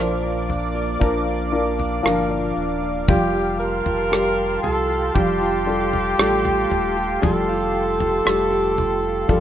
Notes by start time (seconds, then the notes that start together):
Already playing: A#1 A#2 F3 A#3 D4 A#4 C5 D5 F5 D6
0.23 A#4
0.49 D4, floor tom
0.75 A#4
1.00 A#1 A#2 F3 D4 A#4, kick, floor tom
1.27 D4
1.52 F3 D4 A#4
1.78 D4, floor tom
2.02 G1 F3 D4 A#4 F5, cross-stick
2.29 A#4 D5
2.56 D#1 D4
2.82 A#4
3.08 F1 F3 G3 F4 G4 A5 C6, kick, floor tom
3.34 F4
3.59 G4 A#4
3.85 F1 F4, floor tom
4.11 G3 F4 G4, cross-stick
4.38 G4
4.63 C2 F4 A4, floor tom
4.89 G4
5.14 F1 F3 G3 F4 G4, kick, floor tom
5.41 F4
5.66 G3 F4 G4 A4
5.93 F4, floor tom
6.18 A1 G3 A3 F4 A4, cross-stick
6.44 G4, floor tom
6.70 D#1 F4, floor tom
6.96 G4
7.21 F1 F3 G3 F4 G4 A4, floor tom
7.49 F4
7.74 G4
8.00 F4, floor tom
8.25 F1 G3 A3 F4 G4, cross-stick
8.51 G4
8.77 F4, floor tom
9.03 G4
9.28 F1 F3 G3 F4 G4 A4, kick, floor tom